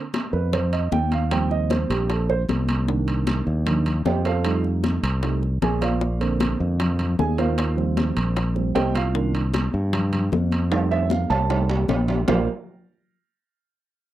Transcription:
0.14 high bongo, high conga, high timbale
0.33 F2 B4, high conga
0.53 C5, high bongo, high conga, low conga, high timbale
0.72 D#5, high bongo, high conga, high timbale
0.92 D#2 G5, high bongo, low bongo, high conga
1.11 F5, high bongo, high conga, high timbale
1.31 F3 G3 C4 G5, high bongo, high conga, high timbale
1.50 D#5, high bongo, high conga
1.70 C5, high bongo, high conga, high timbale
1.90 A#1 G4, high conga, high timbale
2.09 A4, high bongo, high conga, high timbale
2.29 C5, high bongo, high conga
2.49 C2, high bongo, low bongo, high conga, high timbale
2.68 high bongo, high conga, high timbale
2.88 D#3 A#3 D4, high bongo, high conga
3.08 high bongo, high timbale
3.27 high bongo, high conga, high timbale
3.47 D#2, high conga
3.66 D#3 A#3 D4, high bongo, high conga, low conga, high timbale
3.86 high bongo, high conga, low conga, high timbale
4.05 F2 G4 C5 D#5 G5, high bongo, low bongo, high conga, low timbale
4.25 F4 A4 C5 F5, high bongo, high timbale
4.44 G3 A3 D#4, high bongo, high conga, high timbale
4.64 high bongo, high conga
4.83 high bongo, high conga, high timbale
5.03 C2, high conga, high timbale
5.22 G3 A3 D#4, high bongo, high conga, high timbale
5.43 high bongo, high conga
5.62 A#1 G#4 G#5, high bongo, low bongo, high conga, high timbale
5.81 F4 C5 D5 F5, high bongo, high conga, high timbale
6.01 high bongo, high conga
6.20 D3 A#3 C4, high bongo, high conga, high timbale
6.40 high bongo, high conga, high timbale
6.60 F2, high conga
6.80 high bongo, high conga, low conga, high timbale
6.99 high bongo, high conga, low conga, high timbale
7.19 D#2 G#4 G#5, high bongo, low bongo, high conga
7.38 F4 A#4 C5 F5, high bongo, high conga, high timbale
7.58 high bongo, high conga, high timbale
7.76 F3 G3 C4, high bongo, high conga
7.97 high bongo, high conga, high timbale
8.17 A#1, high conga, high timbale
8.36 high bongo, high timbale
8.55 F3 G3 C4, high bongo, high conga
8.75 C2 G4 C5 D#5 G5, high bongo, low bongo, high conga, high timbale
8.95 F4 F5, high bongo, high conga, high timbale
9.14 D#3 A#3 D4, high bongo, high conga
9.35 high bongo, high timbale
9.54 high bongo, high conga, high timbale
9.73 G2, high conga
9.93 high bongo, high conga, low conga, high timbale
10.13 high bongo, high conga, low conga, high timbale
10.32 F2, high bongo, low bongo, high conga
10.52 high bongo, high conga, high timbale
10.71 G3 A3 D#4, high bongo, high conga, high timbale
10.91 E5, high bongo, high conga, high timbale
11.10 F5, high bongo, high conga
11.30 C2 A5, high conga, low timbale
11.49 G3 A3 D#4, high bongo, high conga, low timbale
11.69 high bongo, high conga, low timbale
11.88 A#1, high bongo, low bongo, high conga, low timbale
12.08 high bongo, high conga, low timbale
12.28 A#1 A#3 F4 A#4 C5 D5 F5, low bongo, low conga, low timbale

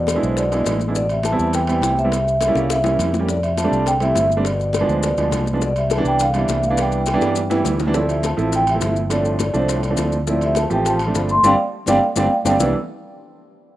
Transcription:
Already playing: E2 B2 D5
0.07 high bongo, high conga, high timbale, maracas
0.16 G#3 B3 D4 E4
0.22 B1 A2 C5, high conga, maracas
0.37 B2 D5, high bongo, high conga, high timbale, maracas
0.52 G#3 B3 D4 E4, high bongo, high timbale, maracas
0.65 A1, high bongo, low bongo, high conga, high timbale, low timbale, maracas
0.80 high bongo, high conga, maracas
0.88 G#3 B3 D4 E4
0.95 B2 D5, high bongo, maracas
1.09 C3 E5, high conga, high timbale, maracas
1.23 E3 A5, high bongo, high conga, high timbale, maracas
1.32 G3 B3 C4 E4
1.39 E2, maracas
1.52 E3 G5, high bongo, high timbale, maracas
1.67 G3 B3 C4 E4, high conga, high timbale, maracas
1.81 C2, high bongo, low bongo, high conga, high timbale, maracas
1.96 C3 E5, high conga, maracas
2.04 G3 B3 C4 E4
2.12 high bongo, high timbale, maracas
2.26 high bongo, high conga, maracas
2.41 C3 E5, high bongo, high conga, high timbale, maracas
2.48 G3 A#3 C#4 E4
2.55 C2 C#3 F5, high bongo, high conga, maracas
2.69 C3 E5, high bongo, high conga, high timbale, maracas
2.84 G3 A#3 C#4 E4, low bongo, high conga, high timbale, maracas
2.98 F2, high conga, high timbale, low timbale, maracas
3.14 low bongo, high conga, maracas
3.19 G3 A#3 C#4 G4
3.28 A2 D5, high bongo, maracas
3.43 C3 E5, high conga, high timbale, maracas
3.56 F3 A5, high bongo, high conga, high timbale, maracas
3.64 G3 A3 C4 D4
3.72 C2, high conga, maracas
3.86 D3 G5, high bongo, high conga, high timbale, maracas
4.00 C3 G3 A3 C4 E4 E5, high conga, high timbale, maracas
4.15 G1, high bongo, low bongo, high conga, high timbale, maracas
4.30 high conga, maracas
4.37 G3 A3 C4 D4
4.45 B2 D5, high bongo, high conga, high timbale, maracas
4.59 high bongo, high conga, maracas
4.73 high bongo, high conga, high timbale, maracas
4.81 F3 G#3 B3 D4
4.88 D2 G#2 C5, maracas
5.03 B2 D5, high bongo, high timbale, maracas
5.17 D2 F3 G#3 B3 D4, high bongo, high conga, high timbale, maracas
5.31 C2, high bongo, low bongo, high conga, high timbale, maracas
5.46 high bongo, high conga, maracas
5.53 F3 G#3 B3 D4
5.61 B2 D5, high bongo, high conga, maracas
5.76 C3 E5, high conga, high timbale, maracas
5.90 E3 A5, high bongo, high conga, high timbale, maracas
5.97 E3 G3 B3 D4
6.04 C2 E3 G5, maracas
6.19 D3 F5, high bongo, high timbale, maracas
6.34 C3 E3 G3 B3 D4 E5, high conga, high timbale, maracas
6.48 C2, high bongo, low bongo, high conga, high timbale, low timbale, maracas
6.63 D3 F5, high conga, maracas
6.70 E3 G3 B3 D4
6.77 E3 G5, high bongo, high conga, high timbale, maracas
6.92 high bongo, maracas
7.06 high bongo, high conga, high timbale, maracas
7.13 E3 G3 B3 D4
7.21 G2, high bongo, high timbale, maracas
7.35 low bongo, maracas
7.50 E3 G3 B3 E4, low bongo, high timbale, maracas
7.65 D2, low bongo, high conga, low timbale, maracas
7.79 low bongo, high conga, low timbale, maracas
7.87 E3 G3 B3 D4
7.94 A2 F3 A3 C4 E4 D5, high bongo, maracas
8.09 C3 E5, high timbale, maracas
8.22 F3, high bongo, high conga, high timbale, maracas
8.26 A5
8.37 A1 F3 A3 C4 E4, high conga, maracas
8.52 D3 G5, high bongo, high conga, high timbale, maracas
8.67 C3 E5, high conga, high timbale, maracas
8.74 F3 A3 C4 E4
8.81 G1, high bongo, low bongo, high conga, high timbale, low timbale, maracas
8.96 high conga, maracas
9.09 A2 F3 A3 C4 D4 D5, high bongo, high conga, high timbale, maracas
9.25 high bongo, maracas
9.39 high bongo, high conga, high timbale, maracas
9.53 C2 A2 F3 A3 C4 D4 C5, maracas
9.68 A2 D5, high bongo, high conga, high timbale, maracas
9.83 high bongo, high conga, high timbale, maracas
9.90 F3 A3 C4 D4
9.97 D2, high bongo, low bongo, high conga, high timbale, low timbale, maracas
10.12 high bongo, high conga, maracas
10.27 A2 F3 A3 C4 E4 D5, high bongo, high conga, maracas
10.41 C3 E5, high timbale, maracas
10.55 F3 A5, high bongo, high conga, high timbale, maracas
10.70 A1 E3 F3 A3 C4 G4 G5, maracas
10.85 F3 A5, high bongo, high conga, high timbale, maracas
10.99 high conga, high timbale, maracas
11.07 F3 A3 C4 D4
11.14 G1 F3 B5, high bongo, low bongo, high conga, high timbale, maracas
11.29 A3 C6, high conga, maracas
11.43 G1 D3 G3 C4 D4 D5 F5 G5, low bongo, high conga, high timbale, maracas
11.86 G1 D3 G3 C4 D4 D5 F5 G5, low bongo, high conga, high timbale, maracas
12.15 G1 D3 G3 C4 D4 D5 F5 G5, low bongo, high conga, high timbale, maracas
12.45 G1 D3 G3 C4 D4 D5 F5 G5, low bongo, high conga, high timbale, maracas
12.59 C2 C3 E3 G3 B3 D4 E6, low bongo, low conga, low timbale, maracas

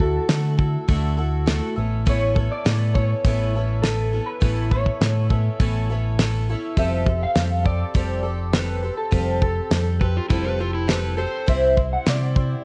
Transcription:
Already playing: D2
0.00 E4 F#4 A4, kick
0.28 D3 A3 E4 F#4 A4, snare, open hi-hat
0.57 E4 F#4 A4, kick
0.88 D2 D3 A3 E4 F#4 A4, kick, open hi-hat
1.17 E4 F#4 A4
1.46 A3 E4 F#4 A4, snare, open hi-hat
1.76 A1 B3 C#4 E4 A4
2.05 A2 E3 B3 C#4 E4 A4, kick, open hi-hat
2.10 C#5
2.35 B3 C#4 E4 A4, kick
2.52 D5
2.65 A2 B3 C#4 E4 A4, snare, open hi-hat
2.94 B3 C#4 E4 A4 C#5, kick
3.25 A1 A2 E3 B3 C#4 E4 A4, kick, open hi-hat
3.55 B3 C#4 E4 A4
3.82 B3 C#4 E4 A4, snare, open hi-hat
3.86 A4
4.13 B3 C#4 E4 A4
4.26 B4
4.40 A1 A2 E3 B3 C#4 E4 A4, kick, open hi-hat
4.71 B3 C#4 E4 A4 C#5, kick
4.86 kick
5.01 A2 B3 C#4 E4 A4, snare, open hi-hat
5.30 B3 C#4 E4 A4, kick
5.60 A1 A2 E3 B3 C#4 E4 A4, kick, open hi-hat
5.90 B3 C#4 E4 A4
6.19 B3 C#4 E4 A4, snare, open hi-hat
6.50 B3 C#4 E4 A4
6.77 F1 F3 G3 C4 G4 A4 E5, kick, open hi-hat
7.06 C4 G4 A4, kick
7.23 F5
7.35 F2 G3 C4 G4 A4, snare, open hi-hat
7.64 C4 G4 A4 D5, kick
7.94 F1 F3 G3 C4 G4 A4, kick, open hi-hat
8.23 C4 G4 A4
8.53 G3 C4 G4 A4 B4, snare, open hi-hat
8.83 C4 G4 A4
8.97 A4
9.11 F1 F3 G3 C4 G4 A4, kick, open hi-hat
9.41 C4 G4 A4, kick
9.71 F2 G3 C4 G4 A4, snare, open hi-hat
10.01 C4 G4 A4 B4, kick
10.17 F4
10.29 F1 F3 G3 C4 E4 G4 A4, kick, open hi-hat
10.45 B4
10.59 C4 F4 G4 A4
10.75 E4
10.87 G3 C4 G4 A4 B4, snare, open hi-hat
11.17 C4 G4 A4 C5
11.47 C2 C3 E3 G3 C4 E4 C5 E5, kick, open hi-hat
11.77 G3 C4 E4 C5, kick
11.93 F#5
12.06 C3 G3 C4 E4 C5 D5, snare, open hi-hat
12.35 G3 C4 E4 C5, kick

